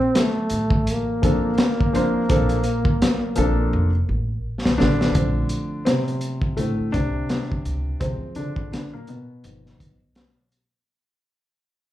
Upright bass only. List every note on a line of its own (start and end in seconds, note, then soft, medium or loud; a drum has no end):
0.51 1.39 A1 medium
2.30 2.85 A#1 loud
3.38 3.65 A#1 medium
3.73 4.00 F1 loud
4.09 4.36 A1 medium
4.66 4.77 A#1 medium
4.81 5.08 A1 medium
5.15 5.43 A#1 loud
6.80 muted upright bass stroke soft
6.94 7.22 C2 medium
7.65 7.93 C#2 medium
8.01 8.29 D2 medium
9.44 9.72 G1 loud
9.80 10.24 B1 medium